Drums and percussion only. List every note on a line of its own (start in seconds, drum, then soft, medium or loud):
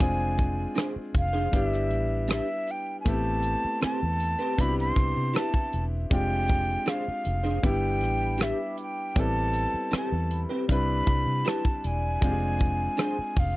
0.00 kick loud
0.00 closed hi-hat medium
0.38 kick medium
0.38 closed hi-hat medium
0.78 cross-stick loud
0.78 closed hi-hat medium
1.15 kick medium
1.15 closed hi-hat medium
1.53 kick medium
1.53 closed hi-hat medium
1.74 cross-stick soft
1.91 closed hi-hat medium
2.30 cross-stick loud
2.30 closed hi-hat medium
2.67 closed hi-hat medium
3.06 kick medium
3.06 closed hi-hat medium
3.42 closed hi-hat medium
3.82 cross-stick loud
3.82 closed hi-hat medium
4.20 closed hi-hat medium
4.58 kick medium
4.58 closed hi-hat medium
4.79 cross-stick soft
4.96 kick medium
4.96 cross-stick soft
4.96 closed hi-hat medium
5.35 cross-stick loud
5.35 closed hi-hat medium
5.54 kick medium
5.73 closed hi-hat medium
6.11 kick loud
6.11 closed hi-hat medium
6.48 kick medium
6.48 closed hi-hat medium
6.88 cross-stick medium
6.88 closed hi-hat medium
7.25 closed hi-hat medium
7.63 kick medium
7.63 closed hi-hat medium
8.01 cross-stick soft
8.01 closed hi-hat medium
8.40 cross-stick loud
8.40 closed hi-hat medium
8.77 closed hi-hat medium
9.16 kick loud
9.16 closed hi-hat medium
9.53 closed hi-hat medium
9.93 cross-stick loud
9.93 closed hi-hat medium
10.31 closed hi-hat medium
10.69 kick medium
10.69 closed hi-hat medium
11.07 kick medium
11.07 closed hi-hat medium
11.47 cross-stick loud
11.47 closed hi-hat medium
11.65 kick medium
11.84 closed hi-hat medium
12.22 kick loud
12.22 closed hi-hat medium
12.59 kick medium
12.59 closed hi-hat medium
12.99 cross-stick loud
12.99 closed hi-hat medium
13.36 kick medium
13.36 open hi-hat medium